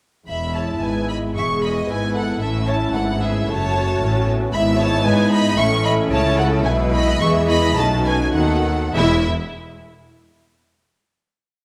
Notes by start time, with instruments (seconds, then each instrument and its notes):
0.28 double bass section E1, cello section E2, viola section G#3 E4, french horn section G#3 B3, violin section E5 B5
0.55 violin section C#5 A5
0.83 double bass section G#1, cello section G#2, violin section B4 G#5
1.09 violin section D#5 B5
1.36 double bass section E1, cello section E2, viola section G#3 G#4, violin section E5 C#6
1.62 violin section D#5 B5
1.88 double bass section G#1, cello section G#2, viola section B3 E4, violin section B4 G#5
2.14 violin section A4 F#5
2.40 double bass section A1, cello section A2, french horn section A3 C#4, viola section C#4 E4, violin section A4 E5
2.67 violin section C#5 A5
2.94 double bass section G#1, cello section G#2, viola section B3, violin section A4 F#5
3.21 violin section G#4 E5
3.49 double bass section F#1, cello section F#2, viola section A3 F#4, violin section C#5 A5
4.02 double bass section A1, cello section A2, viola section C#4
4.28 viola section B3
4.53 double bass section G#1, cello section G#2, french horn section G#3 E4, viola section E4, violin section E5 B5
4.79 violin section C#5 A5
5.05 double bass section G#2, cello section G#3, viola section D#4, violin section B4 G#5
5.31 violin section D#5 B5
5.57 double bass section A1, cello section A2, french horn section A3, viola section A3 C#4, violin section E5 C#6
5.84 violin section D#5 B5
6.11 double bass section C#2, cello section C#3, viola section A3, violin section C#5 A5
6.38 violin section A4 F#5
6.64 double bass section B1, cello section B2, french horn section G#3, viola section B3 E4, violin section B4 G#5
6.93 violin section D#5 B5
7.20 double bass section E2, cello section E3, viola section G#4, violin section E5 C#6
7.49 violin section D#5 B5
7.77 double bass section B1, cello section B2, french horn section A3 D#4, viola section C#4 F#4, violin section D#5 A5
8.05 violin section B4 G#5
8.34 double bass section D#2, cello section D#3, viola section B3 F#4, violin section A4 F#5
8.93 double bass section E1, cello section E2, french horn section G#3 E4, viola section G#3 E4, violin section E4 E5